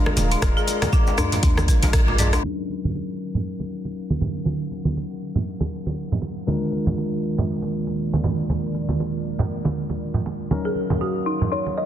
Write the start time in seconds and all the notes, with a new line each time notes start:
Already playing: G#3 D4 F4 G#4 A#4 D5 F5 A#5
0.06 cross-stick, djembe slap, high conga
0.17 D#1, closed hi-hat, muted conga, high conga, low conga, cabasa
0.32 D4, closed hi-hat, cabasa
0.42 D#1 G#3 D4 F4 A#4, kick, cross-stick, closed hi-hat, muted conga, djembe tone, high conga, cabasa
0.57 G#4, cabasa
0.67 closed hi-hat, muted conga, cabasa
0.82 cross-stick, closed hi-hat, djembe slap, high conga, low conga, cabasa
0.93 F4, kick, muted conga, cabasa
1.07 djembe slap, cabasa
1.18 D4, cross-stick, closed hi-hat, mid tom, djembe tone, djembe bass, cabasa
1.32 closed hi-hat, muted conga, low conga, cabasa
1.43 D#2 D4, kick, closed hi-hat, djembe tone, cabasa
1.57 cross-stick, muted conga, high conga, cabasa
1.68 A#1 A#4, kick, closed hi-hat, djembe tone, cabasa
1.82 A#1 G#3 D4 F4 A#4, closed hi-hat, djembe slap, muted conga, high conga, cabasa
1.93 kick, cross-stick, closed hi-hat, cabasa
2.08 F4, low conga
2.18 G#3 D4 F4 D5, closed hi-hat, mid tom, muted conga, djembe tone, cabasa
2.33 D4, cross-stick, closed hi-hat, djembe slap, cabasa
2.43 F#3 C#4 D#4 A#4 F5 F#5, muted conga, high conga
2.70 muted conga
2.85 high conga, low conga
2.95 muted conga
3.35 muted conga, low conga
3.60 muted conga
3.85 muted conga
4.10 high conga
4.20 muted conga, high conga, low conga
4.45 muted conga, high conga
4.72 muted conga
4.85 high conga
4.97 muted conga
5.35 muted conga, low conga
5.60 muted conga, high conga
5.86 muted conga, high conga
6.12 low conga
6.22 muted conga
6.47 D#3 G#3 A#3 D4 F4 A#4 D5, muted conga, high conga
6.72 muted conga
6.87 high conga, low conga
6.98 muted conga
7.38 muted conga, low conga
7.62 muted conga
7.87 muted conga
8.13 high conga
8.24 muted conga, high conga, low conga
8.50 muted conga, high conga
8.75 muted conga
8.89 high conga
9.00 muted conga
9.39 muted conga, low conga
9.64 muted conga, high conga
9.90 muted conga, high conga
10.14 low conga
10.26 muted conga
10.51 F#3 C#4 D#4 A#4 F5 F#5, muted conga, high conga
10.65 G#4
10.75 muted conga
10.90 high conga, low conga
11.01 F#4, muted conga
11.26 D#4
11.41 muted conga, low conga
11.52 D#4 C#5
11.66 muted conga
11.78 D#5